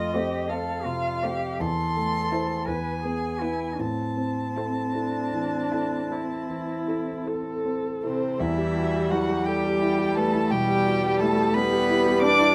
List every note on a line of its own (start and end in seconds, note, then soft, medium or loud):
0.00 1.57 F2 soft
0.00 0.36 A3 soft
0.00 0.16 F4 soft
0.00 0.51 D#5 medium
0.14 0.41 A3 soft
0.14 0.46 C4 soft
0.14 0.41 F4 soft
0.14 0.50 G4 medium
0.14 0.46 C5 soft
0.49 0.82 C4 soft
0.49 0.87 A4 soft
0.49 0.82 C5 soft
0.49 1.62 F5 medium
0.85 1.46 C3 soft
0.85 1.25 F4 soft
1.23 1.52 A3 soft
1.23 1.57 C4 soft
1.23 1.52 F4 soft
1.23 1.62 G4 soft
1.23 1.57 C5 soft
1.60 2.65 E2 soft
1.60 2.69 A4 medium
1.60 2.68 C6 medium
1.97 2.54 A3 soft
2.32 2.59 A3 soft
2.32 2.65 E4 soft
2.32 2.59 E4 soft
2.32 2.65 C5 soft
2.67 3.76 E2 soft
2.67 3.04 B4 soft
2.67 3.81 G#5 medium
3.04 3.64 B3 soft
3.04 3.42 G#4 soft
3.41 3.70 B3 soft
3.41 3.80 E4 soft
3.41 3.76 E4 soft
3.41 3.70 E4 soft
3.41 3.76 B4 soft
3.78 6.06 A2 soft
3.78 7.83 C4 soft
3.78 7.27 A5 medium
4.17 4.79 C4 soft
4.56 4.86 C4 soft
4.56 4.91 E4 soft
4.56 4.85 E4 soft
4.56 4.91 A4 soft
4.94 6.13 D4 soft
4.94 5.29 E4 soft
4.94 5.29 A4 soft
5.34 5.96 E3 soft
5.72 6.01 E4 soft
5.72 6.07 E4 soft
5.72 6.08 A4 soft
6.11 6.73 C4 soft
6.11 7.29 E4 soft
6.50 7.11 E3 soft
6.88 7.23 E4 soft
6.88 7.18 E4 soft
6.88 7.23 A4 soft
7.26 7.61 E4 soft
7.26 7.61 A4 soft
7.26 8.39 A4 soft
7.65 8.26 C4 soft
8.02 8.41 C3 soft
8.02 8.42 C4 soft
8.02 8.36 E4 soft
8.02 8.37 A4 soft
8.02 8.42 C5 medium
8.40 10.47 E2 soft
8.40 9.13 E3 medium
8.40 9.42 G3 soft
8.40 9.13 E4 medium
8.40 9.12 E5 medium
8.58 8.87 G4 soft
8.77 8.94 F#4 soft
8.94 9.22 G4 soft
9.11 9.49 F#3 medium
9.11 9.40 E4 soft
9.11 9.46 F#4 medium
9.11 9.47 F#5 medium
9.29 9.57 G4 soft
9.46 10.49 G3 medium
9.46 10.17 G3 medium
9.46 10.19 G4 medium
9.46 9.64 A4 soft
9.46 10.17 G5 medium
9.64 9.92 G4 soft
9.82 10.10 E4 soft
9.99 10.27 G4 soft
10.16 10.54 A3 medium
10.16 10.52 A4 medium
10.16 10.45 B4 soft
10.16 10.52 A5 medium
10.33 10.62 E4 soft
10.50 10.79 B2 soft
10.50 11.53 G3 medium
10.50 11.22 G3 medium
10.50 11.22 G4 medium
10.50 11.19 G5 medium
10.69 10.97 G4 soft
10.86 11.03 F#4 soft
11.04 11.31 G4 soft
11.20 11.58 A3 medium
11.20 11.49 E4 medium
11.20 11.56 A4 medium
11.20 11.55 A5 medium
11.37 11.65 G4 medium
11.54 12.55 G3 medium
11.54 12.24 B3 medium
11.54 11.72 A4 soft
11.54 12.23 B4 medium
11.54 12.21 B5 medium
11.73 12.00 G4 medium
11.90 12.16 E4 medium
12.06 12.33 G4 medium
12.22 12.55 D4 medium
12.22 12.50 B4 medium
12.22 12.55 D5 medium
12.22 12.55 D6 loud
12.40 12.55 E4 soft